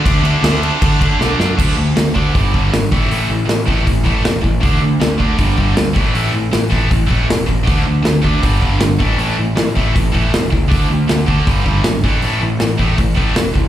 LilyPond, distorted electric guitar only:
\new Staff \with { instrumentName = "Distorted electric guitar" } { \clef bass \time 4/4 \key d \lydian \tempo 4 = 158 <d a d'>8 <d a d'>8 <d a d'>8 <d a d'>8 <d a d'>8 <d a d'>8 <d a d'>8 <d a d'>8 | <d a d'>8 <d a>8 <d a>8 <d a d'>8 <g, d g>8 <g, d g>8 <g, d>8 <a, e a>8 | <a, e a>8 <a, e>8 <a, e>8 <a, e a>8 <a, e>8 <a, e a>8 <a, e>8 <a, e>8 | <d a d'>8 <d a>8 <d a>8 <d a d'>8 <g, d g>8 <g, d g>8 <g, d>8 <a, e a>8 |
<a, e a>8 <a, e>8 <a, e>8 <a, e a>8 <a, e>8 <a, e a>8 <a, e>8 <a, e>8 | <d a d'>8 <d a>8 <d a>8 <d a d'>8 <g, d g>8 <g, d g>8 <g, d>8 <a, e a>8 | <a, e a>8 <a, e>8 <a, e>8 <a, e a>8 <a, e>8 <a, e a>8 <a, e>8 <a, e>8 | <d a d'>8 <d a>8 <d a>8 <d a d'>8 <g, d g>8 <g, d g>8 <g, d>8 <a, e a>8 |
<a, e a>8 <a, e>8 <a, e>8 <a, e a>8 <a, e>8 <a, e a>8 <a, e>8 <a, e>8 | }